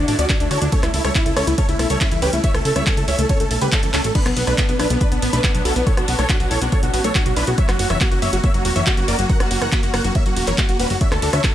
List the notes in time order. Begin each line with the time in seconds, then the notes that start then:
Already playing: D3 D4 E4 F#4 A4
0.08 A1 D4 D5, open hi-hat, ride
0.19 D2 C#4 F#4 D5, closed hi-hat
0.29 D4 F#4, kick, clap, closed hi-hat, ride
0.40 D2 A3 D4, closed hi-hat
0.51 D2 F#4 A4 C#5, open hi-hat, ride
0.62 D2 D4, closed hi-hat
0.72 A3 C#4 A4 C#5, kick, closed hi-hat, ride
0.83 C#2 A3 E4, cross-stick, clap, closed hi-hat
0.94 C#2 E4 A4, open hi-hat, ride
1.05 C#2 G3 A4 C#5, cross-stick, closed hi-hat
1.15 C#4 E4, kick, clap, closed hi-hat, ride
1.26 C#2 E4 A4, closed hi-hat
1.37 C#2 C#4 A4 C#5, cross-stick, open hi-hat, ride
1.47 C#2 A3 E4, closed hi-hat
1.58 C#4 A4 C#5, kick, closed hi-hat, ride
1.69 C#2 A3 E4, closed hi-hat
1.79 B1 E4 A4, cross-stick, open hi-hat, ride
1.90 C#2 G3 A4 C#5, closed hi-hat
2.01 C#4 E4, kick, clap, closed hi-hat, ride
2.11 C#2 E3 E4, closed hi-hat
2.22 C#2 C#4 G4 B4, open hi-hat, ride
2.33 C#2 A3 E4, closed hi-hat
2.44 A3 C#5 E5, kick, closed hi-hat, ride
2.54 C#2 A3 A4, cross-stick, closed hi-hat
2.65 C#2 A4, open hi-hat, ride
2.76 C#2 G3 C#5 E5, cross-stick, closed hi-hat
2.87 C#4 A4, kick, clap, closed hi-hat, ride
2.97 C#2 A4, closed hi-hat
3.08 C#2 C#4 C#5 E5, open hi-hat, ride
3.19 C#2 A3 A4, closed hi-hat
3.29 C#4 A4 C#5, kick, closed hi-hat, ride
3.40 C#2 A3 A4, closed hi-hat
3.51 B1 A4, open hi-hat, ride
3.61 C#2 G3 G4 B4, closed hi-hat
3.72 C#4 A4, kick, clap, closed hi-hat, ride
3.83 C#2 E3 A4, closed hi-hat
3.94 C#2 C#4 A4, clap, open hi-hat, ride
4.04 A1 A3 A4, closed hi-hat
4.15 B3 C#4 D4 B4, kick, closed hi-hat, crash
4.26 B1 B3, cross-stick, clap, closed hi-hat
4.36 B1 B3 B4, open hi-hat, ride
4.47 B1 A3 D4 B4, cross-stick, closed hi-hat
4.58 B3 D4, kick, clap, closed hi-hat
4.69 B1 B3 B4, closed hi-hat
4.79 B1 D4 E4 B4, cross-stick, open hi-hat, ride
4.90 B1 B3, closed hi-hat
5.01 D4 B4, kick, closed hi-hat
5.11 B1 B3, closed hi-hat
5.22 A1 B3 B4, open hi-hat, ride
5.33 B1 A3 D4 B4, closed hi-hat
5.44 B3 D4, kick, clap, closed hi-hat
5.54 B1 F#3 B3, closed hi-hat
5.65 B1 E4 F#4 A4, open hi-hat, ride
5.76 B1 B3, closed hi-hat
5.87 B3 A4 C#5, kick, closed hi-hat
5.97 B1 B3 F#4, cross-stick, closed hi-hat
6.08 B1 F#4 B4, open hi-hat, ride
6.19 B1 A3 A4 C#5, cross-stick, closed hi-hat
6.29 D4 F#4, kick, clap, closed hi-hat
6.40 B1 F#4 B4, closed hi-hat
6.51 B1 E4 A4 C#5, open hi-hat, ride
6.62 B1 B3 F#4, closed hi-hat
6.72 D4 A4 C#5, kick, closed hi-hat
6.83 B1 B3 F#4, closed hi-hat
6.94 A1 F#4 B4, open hi-hat, ride
7.04 B1 A3 A4 C#5, closed hi-hat
7.15 D4 F#4, kick, clap, closed hi-hat
7.26 B1 F#3 F#4, closed hi-hat
7.37 B1 D4 E4 B4, open hi-hat, ride
7.47 B1 B3 F#4, closed hi-hat
7.58 F#3 A#3 F#4 C#5 E5, kick, closed hi-hat
7.69 F#1 F#3 F#4, cross-stick, clap, closed hi-hat
7.79 F#1 F#4, open hi-hat, ride
7.90 F#1 E3 C#5 E5, cross-stick, closed hi-hat
8.01 A#3 F#4, kick, clap, closed hi-hat
8.11 F#1 F#4, closed hi-hat
8.22 F#1 A#3 C#5 E5, open hi-hat, ride
8.33 F#1 F#3 F#4, closed hi-hat
8.44 A#3 C#5 E5, kick, closed hi-hat
8.54 F#1 F#3 F#4, closed hi-hat
8.65 E1 F#4, open hi-hat, ride
8.76 F#1 E3 C#5 E5, closed hi-hat
8.86 A#3 F#4, kick, clap, closed hi-hat
8.97 F#1 C#3 F#4, closed hi-hat
9.08 F#1 A#3 A#4 D5, open hi-hat, ride
9.19 F#1 F#3 F#4, closed hi-hat
9.29 F#3 A#4 F#5, kick, closed hi-hat
9.40 F#1 F#3 F#4, cross-stick, closed hi-hat
9.51 F#1 F#4, open hi-hat, ride
9.62 F#1 E3 A#4 F#5, cross-stick, closed hi-hat
9.72 A#3 F#4, kick, clap, closed hi-hat
9.83 F#1 F#4, closed hi-hat
9.94 F#1 A#3 A#4 F#5, cross-stick, open hi-hat, ride
10.04 F#1 F#3 F#4, closed hi-hat
10.15 A#3 C#5 E5, kick, closed hi-hat
10.26 F#1 F#3 F#4, closed hi-hat
10.37 E1 F#4, open hi-hat, ride
10.47 F#1 E3 A#4 C#5, clap, closed hi-hat
10.58 A#3 F#4, kick, clap, closed hi-hat
10.69 F#1 C#3 F#4, closed hi-hat
10.80 E1 A#3 F#4 B4, open hi-hat, ride
10.90 F#1 F#3 F#4, open hi-hat
11.01 D3 D4 E4 F#4 A4 C#5 E5, kick, closed hi-hat
11.12 D2 D4 A4, cross-stick, clap, closed hi-hat
11.22 D2 A4 D5, open hi-hat, ride
11.33 D2 C#4 C#5 E5, cross-stick, closed hi-hat
11.44 F#4 A4, kick, clap, closed hi-hat